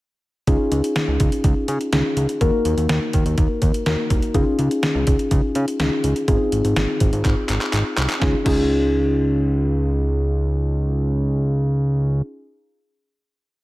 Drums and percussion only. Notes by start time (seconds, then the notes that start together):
0.47 kick, closed hi-hat
0.72 closed hi-hat
0.84 closed hi-hat
0.96 snare, closed hi-hat
1.20 kick, closed hi-hat
1.32 closed hi-hat
1.44 kick, closed hi-hat
1.68 closed hi-hat
1.81 closed hi-hat
1.93 snare, closed hi-hat
2.17 closed hi-hat
2.29 closed hi-hat
2.41 kick, closed hi-hat
2.65 closed hi-hat
2.78 closed hi-hat
2.89 snare, closed hi-hat
3.13 kick, closed hi-hat
3.26 closed hi-hat
3.38 kick, closed hi-hat
3.62 kick, closed hi-hat
3.74 closed hi-hat
3.86 snare, closed hi-hat
4.10 kick, closed hi-hat
4.22 closed hi-hat
4.34 kick, closed hi-hat
4.59 closed hi-hat
4.71 closed hi-hat
4.83 snare, closed hi-hat
5.07 kick, closed hi-hat
5.19 closed hi-hat
5.31 kick, closed hi-hat
5.55 closed hi-hat
5.68 closed hi-hat
5.80 snare, closed hi-hat
6.04 closed hi-hat
6.16 closed hi-hat
6.28 kick, closed hi-hat
6.52 closed hi-hat
6.65 closed hi-hat
6.76 snare, closed hi-hat
7.00 kick, closed hi-hat
7.13 closed hi-hat
7.25 kick, clap, closed hi-hat
7.49 clap, closed hi-hat
7.61 clap, closed hi-hat
7.73 clap, closed hi-hat
7.97 clap, closed hi-hat
8.10 clap, closed hi-hat
8.22 kick, snare
8.46 kick, crash